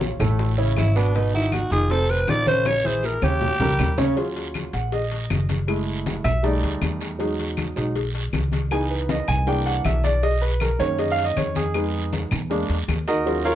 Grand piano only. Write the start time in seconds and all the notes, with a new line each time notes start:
Already playing: C#3 C#4 F4
0.20 A2 A3 A4
0.58 C#3 C#4 E4
0.96 B2 B3 B4
1.15 B2 B3 B4
1.34 D#3 D#4 F#4
1.71 D#3 D#4 F4
1.90 C3 C4 C5
2.28 D#3 D#4 F4
2.46 C#3 C#4 C#5
2.84 E3 E4 G#4
3.22 C#3 C#4 C#5
3.60 G3 G4 A#4
3.98 C#3 C#4 C#5
4.16 F#3 C#4 F4
4.74 F#5
4.93 D#5
5.67 G#3 A3 E4
6.24 E5
6.43 G3 A3 D#4 D5
7.19 F#3 G#3 D#4
7.76 F#3 G#3 D#4
8.71 E3 B3 D#4 G#5
8.90 B4
9.10 D#5
9.28 G#5
9.47 E3 A#3 D4 G5
9.66 F#5
9.85 E5
10.04 D5
10.23 D#5
10.41 B4
10.61 A#4
10.79 D#3 A#3 C#4 C#5
10.99 D#5
11.12 F5
11.25 D#5
11.37 C#5
11.56 G#4
11.74 G#3 B3 D#4
12.50 G#3 A#3 D4
13.08 D#4 F#4 A#4 D#5
13.26 F#3 C#4 F4
13.45 F4 A#4 C#5 F5